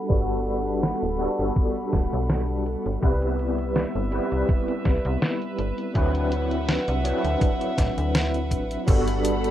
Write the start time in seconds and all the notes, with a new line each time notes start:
Already playing: G3 B3 D4 F#4 A4 F#5 B5
0.08 G1 G3 B3 D4 F#4 A4, kick, closed hi-hat
0.29 closed hi-hat
0.46 closed hi-hat
0.66 closed hi-hat
0.83 snare, closed hi-hat
1.03 D1, closed hi-hat
1.18 G3 B3 D4 F#4 A4, closed hi-hat
1.39 G1, closed hi-hat
1.56 kick, closed hi-hat
1.76 closed hi-hat
1.93 D1, kick, snare, closed hi-hat
2.12 B1, closed hi-hat
2.29 snare, closed hi-hat
2.49 closed hi-hat
2.66 closed hi-hat
2.86 G1, closed hi-hat
3.02 C2 G3 B3 C4 E4 B4 E5, kick, closed hi-hat
3.22 closed hi-hat
3.39 closed hi-hat
3.59 closed hi-hat
3.76 snare, closed hi-hat
3.95 G1, closed hi-hat
4.11 G3 B3 C4 E4 B4, closed hi-hat
4.32 C2, closed hi-hat
4.49 kick, closed hi-hat
4.68 closed hi-hat
4.85 C2, kick, snare, closed hi-hat
5.05 C2, closed hi-hat
5.22 snare, closed hi-hat
5.42 closed hi-hat
5.59 G1, closed hi-hat
5.78 closed hi-hat
5.94 D2 F#3 C4 D4 E4 B4 E5 F#5, kick, closed hi-hat
6.15 closed hi-hat
6.32 closed hi-hat
6.51 closed hi-hat
6.69 snare, closed hi-hat
6.88 C2, closed hi-hat
7.03 F#3 C4 D4 E4 B4, closed hi-hat
7.24 D2, closed hi-hat
7.41 kick, closed hi-hat
7.61 closed hi-hat
7.78 A1, kick, snare, closed hi-hat
7.98 D2, closed hi-hat
8.15 snare, closed hi-hat
8.34 closed hi-hat
8.51 A1, kick, closed hi-hat
8.71 closed hi-hat
8.86 G1 G3 B3 D4 F#4 A4 F#5 B5, kick, closed hi-hat, crash
9.08 closed hi-hat
9.25 closed hi-hat
9.44 closed hi-hat